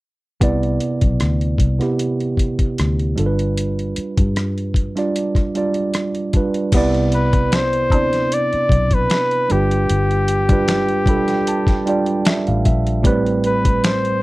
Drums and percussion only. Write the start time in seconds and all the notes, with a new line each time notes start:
0.41 kick, closed hi-hat
0.63 closed hi-hat
0.80 closed hi-hat
1.01 kick, closed hi-hat
1.20 cross-stick, closed hi-hat
1.41 closed hi-hat
1.58 kick, closed hi-hat
1.81 cross-stick, closed hi-hat
1.99 closed hi-hat
2.20 closed hi-hat
2.37 kick, closed hi-hat
2.59 kick, closed hi-hat
2.78 cross-stick, closed hi-hat
2.99 closed hi-hat
3.18 closed hi-hat
3.39 closed hi-hat
3.57 closed hi-hat
3.79 closed hi-hat
3.96 closed hi-hat
4.17 kick, closed hi-hat
4.36 cross-stick, closed hi-hat
4.58 closed hi-hat
4.74 kick, closed hi-hat
4.97 cross-stick, closed hi-hat
5.16 closed hi-hat
5.35 kick, cross-stick, closed hi-hat
5.55 closed hi-hat
5.74 closed hi-hat
5.94 cross-stick, closed hi-hat
6.15 closed hi-hat
6.33 kick, closed hi-hat
6.54 closed hi-hat
6.72 kick, closed hi-hat, crash
6.94 closed hi-hat
7.12 closed hi-hat
7.33 kick, closed hi-hat
7.52 finger snap, snare, closed hi-hat
7.73 closed hi-hat
7.90 kick, closed hi-hat
8.13 snare, closed hi-hat
8.32 closed hi-hat
8.53 closed hi-hat
8.69 kick, closed hi-hat
8.91 kick, closed hi-hat
9.10 finger snap, snare, closed hi-hat
9.31 closed hi-hat
9.50 closed hi-hat
9.71 closed hi-hat
9.89 closed hi-hat
10.11 closed hi-hat
10.28 closed hi-hat
10.49 kick, closed hi-hat
10.68 finger snap, snare, closed hi-hat
10.89 closed hi-hat
11.06 kick, closed hi-hat
11.28 snare, closed hi-hat
11.47 closed hi-hat
11.67 kick, snare, closed hi-hat
11.87 closed hi-hat
12.06 closed hi-hat
12.25 finger snap, snare, closed hi-hat
12.47 closed hi-hat
12.65 kick, closed hi-hat
12.87 closed hi-hat
13.04 kick, closed hi-hat
13.26 closed hi-hat
13.44 closed hi-hat
13.65 kick, closed hi-hat
13.84 finger snap, snare, closed hi-hat
14.05 closed hi-hat